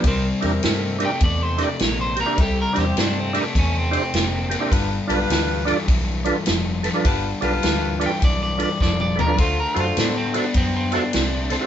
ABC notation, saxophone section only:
X:1
M:4/4
L:1/8
Q:"Swing" 1/4=103
K:Gmix
V:1 name="Saxophone section"
[CEG_B] [CEGB]2 z4 z | [CEGA] [CEGc]2 z4 z | [DFGB] [DFGB]2 z4 z | [DFGB] [DFGB]2 z4 z |
[D^FAc] [DFAc]2 z4 z |]